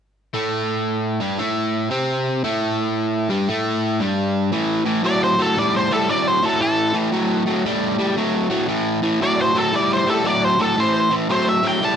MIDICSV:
0, 0, Header, 1, 3, 480
1, 0, Start_track
1, 0, Key_signature, 0, "minor"
1, 0, Tempo, 522193
1, 303, Time_signature, 4, 2, 24, 8
1, 4158, Key_signature, 0, "minor"
1, 10996, End_track
2, 0, Start_track
2, 0, Title_t, "Lead electric guitar"
2, 0, Program_c, 0, 29
2, 4649, Note_on_c, 0, 74, 78
2, 4798, Note_off_c, 0, 74, 0
2, 4813, Note_on_c, 0, 72, 79
2, 4960, Note_off_c, 0, 72, 0
2, 4979, Note_on_c, 0, 69, 74
2, 5123, Note_off_c, 0, 69, 0
2, 5134, Note_on_c, 0, 74, 76
2, 5280, Note_off_c, 0, 74, 0
2, 5296, Note_on_c, 0, 72, 85
2, 5441, Note_off_c, 0, 72, 0
2, 5448, Note_on_c, 0, 69, 78
2, 5597, Note_off_c, 0, 69, 0
2, 5601, Note_on_c, 0, 74, 79
2, 5769, Note_off_c, 0, 74, 0
2, 5769, Note_on_c, 0, 72, 75
2, 5931, Note_off_c, 0, 72, 0
2, 5931, Note_on_c, 0, 69, 77
2, 6073, Note_off_c, 0, 69, 0
2, 6084, Note_on_c, 0, 69, 86
2, 6379, Note_off_c, 0, 69, 0
2, 8483, Note_on_c, 0, 74, 94
2, 8630, Note_off_c, 0, 74, 0
2, 8651, Note_on_c, 0, 72, 87
2, 8794, Note_off_c, 0, 72, 0
2, 8805, Note_on_c, 0, 69, 75
2, 8950, Note_off_c, 0, 69, 0
2, 8967, Note_on_c, 0, 74, 86
2, 9112, Note_off_c, 0, 74, 0
2, 9128, Note_on_c, 0, 72, 81
2, 9272, Note_off_c, 0, 72, 0
2, 9278, Note_on_c, 0, 69, 85
2, 9427, Note_off_c, 0, 69, 0
2, 9434, Note_on_c, 0, 74, 80
2, 9601, Note_off_c, 0, 74, 0
2, 9601, Note_on_c, 0, 72, 90
2, 9748, Note_off_c, 0, 72, 0
2, 9756, Note_on_c, 0, 69, 85
2, 9905, Note_off_c, 0, 69, 0
2, 9927, Note_on_c, 0, 72, 92
2, 10217, Note_off_c, 0, 72, 0
2, 10399, Note_on_c, 0, 72, 90
2, 10547, Note_off_c, 0, 72, 0
2, 10559, Note_on_c, 0, 76, 83
2, 10726, Note_off_c, 0, 76, 0
2, 10726, Note_on_c, 0, 79, 74
2, 10870, Note_off_c, 0, 79, 0
2, 10887, Note_on_c, 0, 81, 95
2, 10996, Note_off_c, 0, 81, 0
2, 10996, End_track
3, 0, Start_track
3, 0, Title_t, "Overdriven electric guitar"
3, 0, Program_c, 1, 29
3, 308, Note_on_c, 1, 45, 71
3, 310, Note_on_c, 1, 57, 81
3, 1092, Note_off_c, 1, 45, 0
3, 1093, Note_off_c, 1, 57, 0
3, 1107, Note_on_c, 1, 43, 67
3, 1109, Note_on_c, 1, 55, 74
3, 1268, Note_off_c, 1, 43, 0
3, 1269, Note_off_c, 1, 55, 0
3, 1273, Note_on_c, 1, 45, 71
3, 1279, Note_on_c, 1, 57, 77
3, 1749, Note_off_c, 1, 45, 0
3, 1752, Note_off_c, 1, 57, 0
3, 1754, Note_on_c, 1, 48, 70
3, 1760, Note_on_c, 1, 60, 82
3, 2230, Note_off_c, 1, 48, 0
3, 2233, Note_off_c, 1, 60, 0
3, 2241, Note_on_c, 1, 45, 80
3, 2243, Note_on_c, 1, 57, 86
3, 3022, Note_off_c, 1, 45, 0
3, 3023, Note_off_c, 1, 57, 0
3, 3024, Note_on_c, 1, 43, 83
3, 3031, Note_on_c, 1, 55, 91
3, 3190, Note_off_c, 1, 43, 0
3, 3194, Note_off_c, 1, 55, 0
3, 3198, Note_on_c, 1, 45, 75
3, 3204, Note_on_c, 1, 57, 85
3, 3673, Note_off_c, 1, 45, 0
3, 3676, Note_off_c, 1, 57, 0
3, 3678, Note_on_c, 1, 43, 72
3, 3686, Note_on_c, 1, 55, 85
3, 4152, Note_off_c, 1, 43, 0
3, 4157, Note_off_c, 1, 55, 0
3, 4157, Note_on_c, 1, 45, 70
3, 4162, Note_on_c, 1, 52, 80
3, 4437, Note_off_c, 1, 45, 0
3, 4439, Note_off_c, 1, 52, 0
3, 4462, Note_on_c, 1, 45, 75
3, 4471, Note_on_c, 1, 52, 77
3, 4617, Note_off_c, 1, 45, 0
3, 4622, Note_off_c, 1, 52, 0
3, 4631, Note_on_c, 1, 45, 74
3, 4637, Note_on_c, 1, 54, 81
3, 4913, Note_off_c, 1, 45, 0
3, 4916, Note_off_c, 1, 54, 0
3, 4951, Note_on_c, 1, 45, 65
3, 4953, Note_on_c, 1, 54, 78
3, 5101, Note_off_c, 1, 45, 0
3, 5102, Note_off_c, 1, 54, 0
3, 5124, Note_on_c, 1, 45, 78
3, 5130, Note_on_c, 1, 55, 84
3, 5399, Note_off_c, 1, 45, 0
3, 5402, Note_off_c, 1, 55, 0
3, 5434, Note_on_c, 1, 45, 76
3, 5439, Note_on_c, 1, 55, 80
3, 5582, Note_off_c, 1, 45, 0
3, 5585, Note_off_c, 1, 55, 0
3, 5596, Note_on_c, 1, 45, 80
3, 5604, Note_on_c, 1, 54, 82
3, 5874, Note_off_c, 1, 45, 0
3, 5878, Note_off_c, 1, 54, 0
3, 5909, Note_on_c, 1, 45, 76
3, 5913, Note_on_c, 1, 54, 79
3, 6059, Note_off_c, 1, 45, 0
3, 6061, Note_off_c, 1, 54, 0
3, 6074, Note_on_c, 1, 45, 70
3, 6074, Note_on_c, 1, 52, 81
3, 6353, Note_off_c, 1, 45, 0
3, 6353, Note_off_c, 1, 52, 0
3, 6377, Note_on_c, 1, 45, 78
3, 6384, Note_on_c, 1, 52, 79
3, 6532, Note_off_c, 1, 45, 0
3, 6535, Note_off_c, 1, 52, 0
3, 6547, Note_on_c, 1, 45, 80
3, 6551, Note_on_c, 1, 54, 81
3, 6829, Note_off_c, 1, 45, 0
3, 6831, Note_off_c, 1, 54, 0
3, 6860, Note_on_c, 1, 45, 64
3, 6869, Note_on_c, 1, 54, 78
3, 7013, Note_off_c, 1, 45, 0
3, 7017, Note_off_c, 1, 54, 0
3, 7033, Note_on_c, 1, 45, 77
3, 7042, Note_on_c, 1, 55, 86
3, 7310, Note_off_c, 1, 45, 0
3, 7315, Note_off_c, 1, 55, 0
3, 7337, Note_on_c, 1, 45, 65
3, 7340, Note_on_c, 1, 55, 76
3, 7490, Note_off_c, 1, 45, 0
3, 7492, Note_off_c, 1, 55, 0
3, 7502, Note_on_c, 1, 45, 70
3, 7511, Note_on_c, 1, 54, 79
3, 7784, Note_off_c, 1, 45, 0
3, 7789, Note_off_c, 1, 54, 0
3, 7810, Note_on_c, 1, 45, 67
3, 7813, Note_on_c, 1, 54, 84
3, 7966, Note_off_c, 1, 45, 0
3, 7968, Note_off_c, 1, 54, 0
3, 7978, Note_on_c, 1, 45, 75
3, 7984, Note_on_c, 1, 52, 85
3, 8262, Note_off_c, 1, 45, 0
3, 8265, Note_off_c, 1, 52, 0
3, 8292, Note_on_c, 1, 45, 72
3, 8300, Note_on_c, 1, 52, 84
3, 8447, Note_off_c, 1, 45, 0
3, 8451, Note_off_c, 1, 52, 0
3, 8465, Note_on_c, 1, 45, 74
3, 8469, Note_on_c, 1, 54, 84
3, 8745, Note_off_c, 1, 45, 0
3, 8747, Note_off_c, 1, 54, 0
3, 8774, Note_on_c, 1, 45, 65
3, 8776, Note_on_c, 1, 54, 82
3, 8925, Note_off_c, 1, 45, 0
3, 8928, Note_off_c, 1, 54, 0
3, 8936, Note_on_c, 1, 45, 71
3, 8945, Note_on_c, 1, 55, 84
3, 9220, Note_off_c, 1, 45, 0
3, 9224, Note_off_c, 1, 55, 0
3, 9248, Note_on_c, 1, 45, 65
3, 9251, Note_on_c, 1, 55, 80
3, 9404, Note_off_c, 1, 45, 0
3, 9406, Note_off_c, 1, 55, 0
3, 9415, Note_on_c, 1, 45, 72
3, 9419, Note_on_c, 1, 54, 84
3, 9699, Note_off_c, 1, 45, 0
3, 9702, Note_off_c, 1, 54, 0
3, 9731, Note_on_c, 1, 45, 76
3, 9739, Note_on_c, 1, 54, 88
3, 9885, Note_off_c, 1, 45, 0
3, 9889, Note_off_c, 1, 54, 0
3, 9902, Note_on_c, 1, 45, 80
3, 9907, Note_on_c, 1, 52, 81
3, 10183, Note_off_c, 1, 45, 0
3, 10185, Note_off_c, 1, 52, 0
3, 10208, Note_on_c, 1, 45, 67
3, 10213, Note_on_c, 1, 52, 81
3, 10363, Note_off_c, 1, 45, 0
3, 10366, Note_off_c, 1, 52, 0
3, 10383, Note_on_c, 1, 45, 71
3, 10383, Note_on_c, 1, 54, 79
3, 10663, Note_off_c, 1, 45, 0
3, 10663, Note_off_c, 1, 54, 0
3, 10688, Note_on_c, 1, 45, 72
3, 10697, Note_on_c, 1, 54, 73
3, 10844, Note_off_c, 1, 45, 0
3, 10848, Note_off_c, 1, 54, 0
3, 10867, Note_on_c, 1, 45, 66
3, 10871, Note_on_c, 1, 55, 83
3, 10996, Note_off_c, 1, 45, 0
3, 10996, Note_off_c, 1, 55, 0
3, 10996, End_track
0, 0, End_of_file